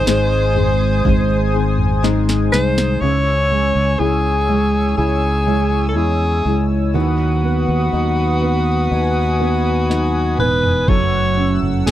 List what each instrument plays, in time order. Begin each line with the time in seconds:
Already playing: felt piano G#3 D#4, alto saxophone C5, analog synth pad C5 G#5 D#6
0.06 fingered electric bass G#1, nylon-string guitar G#2 D#3 G#3 C4 D#4 G#4, felt piano G#4, snare
0.55 nylon-string guitar G#3 C4 D#4 G#4, floor tom
1.04 fingered electric bass G#1, nylon-string guitar G#3 C4 D#4 G#4, felt piano G#3, kick, floor tom
1.53 nylon-string guitar G#3 C4 D#4 G#4
1.79 floor tom
2.03 nylon-string guitar G#2 D#3 G#3 C4 D#4 G#4, felt piano D#4, snare
2.29 snare
2.52 fingered electric bass C2, alto saxophone C5, snare
2.78 snare
3.01 fingered electric bass C#2, nylon-string guitar C#3 G#3 C#4 E4 G#4, felt piano C#3, alto saxophone C#5, analog synth pad C#5 G#5 E6
3.51 felt piano G#3
3.75 fingered electric bass C#2
3.99 fingered electric bass C#2, nylon-string guitar G#3 C#4 E4 G#4, felt piano E4, alto saxophone G#4
4.49 felt piano G#3
4.98 fingered electric bass C#2, felt piano E4, alto saxophone G#4
5.46 felt piano G#3, nylon-string guitar C#4 E4 G#4
5.89 alto saxophone A4
5.96 fingered electric bass E2, nylon-string guitar G#3 C#4 E4 G#4, felt piano E4, alto saxophone G#4
6.44 fingered electric bass C#2, felt piano G#3, nylon-string guitar C#4 E4 G#4
6.94 fingered electric bass D#2, nylon-string guitar D#3 F#3 B3 D#4 B4, felt piano D#3, alto saxophone F#4, analog synth pad B4 F#5 D#6
7.43 felt piano B3
7.68 fingered electric bass D#2
7.92 fingered electric bass D#2, nylon-string guitar F#3 B3 D#4 B4, felt piano D#4
8.42 felt piano B3
8.90 fingered electric bass D#2, felt piano D#4, analog synth pad G#5
9.40 felt piano B3, nylon-string guitar B3 D#4 B4
9.89 nylon-string guitar F#3 B3 D#4 B4, felt piano D#4, snare
10.38 fingered electric bass E1, felt piano B3, nylon-string guitar B3 D#4 B4, alto saxophone B4, mid tom
10.63 floor tom
10.87 fingered electric bass F#1, nylon-string guitar F#3 C#4 E4 A4, felt piano F#3, analog synth pad A3 F#5 E6, alto saxophone C#5, kick, floor tom
11.37 felt piano C#4
11.62 fingered electric bass F#1, floor tom
11.86 fingered electric bass F#1, nylon-string guitar F#3 C#4 E4, felt piano F#3, alto saxophone G#4, snare